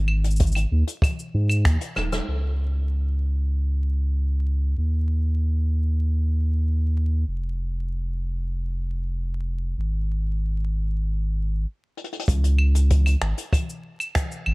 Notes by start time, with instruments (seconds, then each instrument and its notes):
Already playing: sub bass G#1
0.08 claves
0.24 closed hi-hat, cabasa
0.31 cabasa
0.36 closed hi-hat, cabasa
0.40 kick, cabasa
0.47 cabasa
0.52 cabasa, claves
0.56 closed hi-hat, cabasa
0.72 sub bass D#2
0.87 closed hi-hat, cabasa
1.02 kick, closed hi-hat, cabasa, claves
1.19 cabasa
1.34 sub bass G#2
1.49 cabasa, claves
1.65 sub bass D#2, finger snap, kick, closed hi-hat, cabasa
1.81 closed hi-hat, cabasa
1.96 sub bass D#1, cross-stick, claves
2.12 cross-stick, closed hi-hat, cabasa
2.28 sub bass C#2
4.78 sub bass D#2
7.28 sub bass F1
9.78 sub bass G#1
11.97 closed hi-hat
12.04 closed hi-hat
12.12 closed hi-hat
12.19 closed hi-hat
12.28 sub bass C#2, kick, closed hi-hat, cabasa
12.44 closed hi-hat, cabasa
12.59 claves
12.75 closed hi-hat, cabasa
12.90 kick, closed hi-hat, cabasa
13.06 closed hi-hat, cabasa, claves
13.22 sub bass G#1, finger snap
13.38 closed hi-hat, cabasa
13.53 kick, closed hi-hat, cabasa, claves
13.69 cabasa
14.00 cabasa, claves
14.15 finger snap, kick, closed hi-hat, cabasa
14.32 cabasa
14.46 sub bass G#1, claves